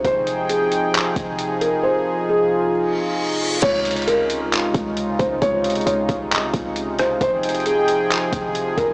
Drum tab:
CC |--------------------------------|--------------------------------|x-------------------------------|--------------------------------|
HH |x---x---x---x---x---x---x---x---|--------------------------------|x---xxxxx---x---x---x---x---x---|x---xxxxx---x---x---x---x---x---|
CP |----------------x---------------|--------------------------------|----------------x---------------|----------------x---------------|
SD |--------------------------------|--------------------------------|--------------------------------|----------------------------r---|
BD |o-------------------o-----------|--------------------------------|o-------------------o-------o---|o-----------o-------o-----------|

CC |--------------------------------|
HH |x---xxxxx---x---x---x---x---x---|
CP |----------------x---------------|
SD |--------------------------------|
BD |o-------------------o-------o---|